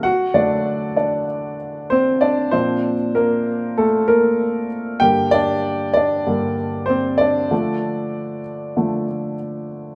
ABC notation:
X:1
M:4/4
L:1/8
Q:1/4=96
K:Dphr
V:1 name="Upright piano"
[^F^f] [Dd]2 [Dd]2 z [Cc] [Dd] | [Cc]2 [B,B]2 [A,A] [B,B]2 z | [Gg] [Dd]2 [Dd]3 [Cc] [Dd]- | [Dd]6 z2 |]
V:2 name="Upright piano" clef=bass
z [D,^F,A,]3 z4 | [B,,F,D] z6 z | [G,,D,B,]4 [G,,D,B,] z3 | [D,F,A,]3 z [D,F,A,] z3 |]